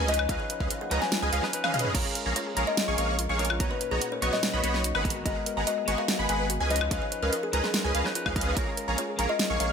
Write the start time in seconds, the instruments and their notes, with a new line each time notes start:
0.00 sub bass C#2, supersaw synth C#4 G#4 B4 D#5 G#5, synth pluck G#5
0.07 clean electric guitar F3 C#4 D#4 B4, synth arpeggio sound B4, kalimba D#5, closed hi-hat
0.14 closed hi-hat
0.19 synth arpeggio sound C#5, high woodblock
0.27 sub bass C#2, clean electric guitar F3 C#4 D#4 B4, supersaw synth C#4 G#4 B4 D#5 F5, synth arpeggio sound F4, synth pluck F5, kick, closed hi-hat
0.40 synth arpeggio sound G#4, kalimba C#5
0.50 synth arpeggio sound B4, closed hi-hat
0.60 sub bass C#2, supersaw synth C#4 G#4 B4 D#5 F5, synth arpeggio sound C#5, synth pluck F5, kalimba F5, kick
0.70 synth arpeggio sound F4, closed hi-hat
0.81 synth arpeggio sound G#4, kalimba F#5
0.90 sub bass C#2, clean electric guitar F3 C#4 D#4 B4, supersaw synth C#4 G#4 B4 D#5 A#5, synth arpeggio sound B4, synth pluck A#5, closed hi-hat
1.02 synth arpeggio sound C#5, kalimba G#5, snare
1.12 synth arpeggio sound F4, snare, closed hi-hat
1.22 sub bass C#2, supersaw synth C#4 G#4 B4 D#5 G#5, synth arpeggio sound G#4, synth pluck G#5
1.32 sub bass C#2, supersaw synth C#4 G#4 B4 D#5 F5, synth arpeggio sound G#4, synth pluck F5, closed hi-hat
1.42 clean electric guitar F3 C#4 D#4 B4, synth arpeggio sound B4, snare
1.52 clean electric guitar F3 C#4 D#4 B4, synth arpeggio sound B4, closed hi-hat
1.64 supersaw synth C#4 G#4 B4 D#5 F5, synth arpeggio sound C#5, synth pluck F5, high tom, high woodblock
1.74 supersaw synth C#4 G#4 B4 D#5 F5, synth arpeggio sound D#5, synth pluck F5, closed hi-hat, mid tom
1.79 closed hi-hat
1.85 synth arpeggio sound G#5, mid tom
1.93 sub bass A#1, clean electric guitar G#3 C#4 F4, supersaw synth A#3 G#4 C#5 F5 A#5, synth arpeggio sound F4, kalimba C#5, synth pluck A#5, kick, closed hi-hat, crash
1.97 clean electric guitar A#4
2.05 synth arpeggio sound G#4
2.15 synth arpeggio sound A#4, closed hi-hat
2.26 sub bass A#1, supersaw synth A#3 G#4 C#5 F5 A#5, synth arpeggio sound C#5, synth pluck A#5
2.36 synth arpeggio sound F4, kalimba C#5, closed hi-hat
2.47 synth arpeggio sound G#4
2.55 sub bass A#1, clean electric guitar G#3 C#4 F4 A#4, supersaw synth A#3 G#4 C#5 F5 A#5, synth arpeggio sound A#4, synth pluck A#5, closed hi-hat
2.67 synth arpeggio sound F4, kalimba D#5
2.77 synth arpeggio sound F4, snare, closed hi-hat
2.88 sub bass A#1, supersaw synth A#3 G#4 C#5 F5 C#6, synth arpeggio sound G#4, synth pluck C#6
2.98 sub bass A#1, supersaw synth A#3 G#4 C#5 F5 C#6, synth arpeggio sound A#4, kalimba F5, synth pluck C#6, closed hi-hat
3.09 synth arpeggio sound C#5
3.19 synth arpeggio sound F4, closed hi-hat
3.29 sub bass A#1, supersaw synth A#3 G#4 C#5 F5 C#6, synth arpeggio sound G#4, synth pluck C#6
3.38 clean electric guitar G#3 C#4 F4 A#4, synth arpeggio sound A#4, kalimba C#5, closed hi-hat
3.45 closed hi-hat
3.50 synth arpeggio sound F4, high woodblock
3.58 sub bass B1, clean electric guitar A#2 C#4 D#4 B4, supersaw synth B3 F#4 C#5 D#5 A#5, synth arpeggio sound F#4, synth pluck A#5, kick, closed hi-hat
3.71 synth arpeggio sound A#4, kalimba B4
3.81 synth arpeggio sound B4, closed hi-hat
3.91 sub bass B1, supersaw synth B3 F#4 C#5 D#5 A#5, kalimba G#4, synth arpeggio sound C#5, synth pluck A#5
4.01 synth arpeggio sound F#4, closed hi-hat
4.12 synth arpeggio sound A#4, kalimba C#5
4.21 sub bass B1, clean electric guitar A#2 C#4 D#4 B4, supersaw synth B3 F#4 C#5 D#5 C#6, synth arpeggio sound B4, synth pluck C#6, closed hi-hat
4.33 synth arpeggio sound F#4, kalimba D#5, snare
4.43 synth arpeggio sound F#4, snare, closed hi-hat
4.53 sub bass B1, supersaw synth B3 F#4 C#5 D#5 B5, synth arpeggio sound A#4, synth pluck B5
4.63 sub bass B1, clean electric guitar A#3 C#4 D#4 C#5, supersaw synth B3 F#4 C#5 D#5 B5, synth arpeggio sound B4, synth pluck B5, closed hi-hat
4.74 synth arpeggio sound C#5, snare
4.84 synth arpeggio sound F#4, closed hi-hat
4.95 sub bass G#1, supersaw synth G#3 G#4 B4 F#5 B5, synth arpeggio sound A#4, synth pluck B5, high woodblock
5.04 clean electric guitar G#3 B3 F#4 A#4, synth arpeggio sound A#4, kick, closed hi-hat
5.10 closed hi-hat
5.15 synth arpeggio sound F#4
5.24 sub bass G#1, clean electric guitar G#3 B3 F#4, supersaw synth G#3 G#4 B4 F#5 A#5, synth arpeggio sound F#4, kalimba D#5, synth pluck A#5, kick, closed hi-hat
5.28 clean electric guitar A#4
5.36 synth arpeggio sound G#4
5.46 synth arpeggio sound A#4, closed hi-hat
5.57 sub bass G#1, supersaw synth G#3 G#4 B4 F#5 A#5, synth arpeggio sound B4, synth pluck A#5
5.67 synth arpeggio sound F#4, kalimba D#5, closed hi-hat
5.78 synth arpeggio sound G#4
5.86 sub bass G#1, clean electric guitar G#3 B3 F#4 A#4, supersaw synth G#3 G#4 B4 F#5 C#6, synth arpeggio sound A#4, synth pluck C#6, closed hi-hat
5.98 synth arpeggio sound F#4, kalimba F5
6.08 synth arpeggio sound F#4, snare, closed hi-hat
6.19 sub bass G#1, supersaw synth G#3 G#4 B4 F#5 B5, synth arpeggio sound G#4, synth pluck B5
6.29 sub bass G#1, supersaw synth G#3 G#4 B4 F#5 B5, synth arpeggio sound A#4, kalimba G#5, synth pluck B5, closed hi-hat
6.40 synth arpeggio sound B4
6.50 synth arpeggio sound F#4, closed hi-hat
6.60 sub bass C#2, supersaw synth C#4 G#4 B4 D#5 G#5, synth arpeggio sound G#4, synth pluck G#5
6.69 clean electric guitar F3 C#4 D#4 B4, synth arpeggio sound B4, kalimba D#5, closed hi-hat
6.76 closed hi-hat
6.81 synth arpeggio sound F4, high woodblock
6.89 sub bass C#2, clean electric guitar F3 C#4 D#4, supersaw synth C#4 G#4 B4 D#5 F5, synth arpeggio sound F4, synth pluck F5, kick, closed hi-hat
6.93 clean electric guitar B4
7.02 synth arpeggio sound G#4, kalimba C#5
7.12 synth arpeggio sound B4, closed hi-hat
7.22 sub bass C#2, supersaw synth C#4 G#4 B4 D#5 F5, kalimba A#4, synth arpeggio sound C#5, synth pluck F5
7.32 synth arpeggio sound F4, closed hi-hat
7.43 synth arpeggio sound G#4, kalimba G#4
7.52 sub bass C#2, clean electric guitar F3 C#4 D#4 B4, supersaw synth C#4 G#4 B4 D#5 A#5, synth arpeggio sound B4, synth pluck A#5, closed hi-hat
7.64 synth arpeggio sound F4, kalimba G#4, snare
7.74 synth arpeggio sound F4, snare, closed hi-hat
7.84 sub bass C#2, supersaw synth C#4 G#4 B4 D#5 G#5, synth arpeggio sound G#4, synth pluck G#5
7.95 sub bass C#2, supersaw synth C#4 G#4 B4 D#5 F5, synth arpeggio sound B4, synth pluck F5, closed hi-hat
8.04 clean electric guitar F3 C#4 D#4 B4, synth arpeggio sound C#5, snare
8.14 clean electric guitar F3 C#4 D#4 B4, synth arpeggio sound F4, closed hi-hat
8.26 sub bass C#2, supersaw synth C#4 G#4 B4 D#5 F5, synth arpeggio sound G#4, synth pluck F5, kick, high woodblock
8.36 sub bass C#2, supersaw synth C#4 G#4 B4 D#5 F5, synth arpeggio sound B4, synth pluck F5, kick, closed hi-hat
8.41 closed hi-hat
8.47 synth arpeggio sound F4
8.55 sub bass A#1, clean electric guitar G#3 C#4 F4, supersaw synth A#3 G#4 C#5 F5 A#5, synth arpeggio sound F4, kalimba C#5, synth pluck A#5, kick, closed hi-hat, ride
8.59 clean electric guitar A#4
8.67 synth arpeggio sound G#4
8.77 synth arpeggio sound A#4, closed hi-hat
8.88 sub bass A#1, supersaw synth A#3 G#4 C#5 F5 A#5, synth arpeggio sound C#5, synth pluck A#5
8.98 synth arpeggio sound F4, kalimba C#5, closed hi-hat
9.09 synth arpeggio sound G#4
9.17 sub bass A#1, clean electric guitar G#3 C#4 F4 A#4, supersaw synth A#3 G#4 C#5 F5 A#5, synth arpeggio sound A#4, synth pluck A#5, closed hi-hat
9.29 synth arpeggio sound F4, kalimba D#5
9.39 synth arpeggio sound F4, snare, closed hi-hat, ride
9.50 sub bass A#1, supersaw synth A#3 G#4 C#5 F5 C#6, synth arpeggio sound G#4, synth pluck C#6
9.60 sub bass A#1, supersaw synth A#3 G#4 C#5 F5 C#6, synth arpeggio sound A#4, kalimba F5, synth pluck C#6, closed hi-hat